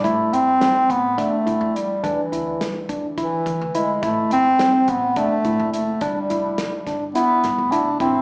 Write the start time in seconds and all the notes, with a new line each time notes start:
0.04 A2 A3 E4, kick, closed hi-hat
0.33 G2 C4, closed hi-hat
0.60 C4, snare, closed hi-hat
0.90 A2 B3, kick, closed hi-hat
1.18 A3 D4, kick, closed hi-hat
1.46 A2 E4, kick, closed hi-hat
1.61 F2
1.76 G3, closed hi-hat
2.03 E2 E3 D4, kick, closed hi-hat
2.32 D2 E4, closed hi-hat
2.61 snare, closed hi-hat
2.89 E2 D4, kick, closed hi-hat
3.18 E3 E4, kick, closed hi-hat
3.46 E3, kick, closed hi-hat
3.61 D2
3.75 G#3 E4, closed hi-hat
4.03 A1 A3 E4, kick, closed hi-hat
4.31 G1 C4, closed hi-hat
4.59 C4, snare, closed hi-hat
4.88 A1 B3, kick, closed hi-hat
5.16 A3 D4, kick, closed hi-hat
5.45 A2 E4, kick, closed hi-hat
5.59 F#1
5.73 A3, closed hi-hat
6.01 G1 G3 D4, kick, closed hi-hat
6.30 F1 E4, closed hi-hat
6.58 snare, closed hi-hat
6.87 G1 D4, kick, snare, closed hi-hat
7.15 B3 E4, closed hi-hat
7.44 G2, snare, closed hi-hat
7.58 F1
7.71 D4 E4, closed hi-hat
8.00 A1 C4 E4, kick, closed hi-hat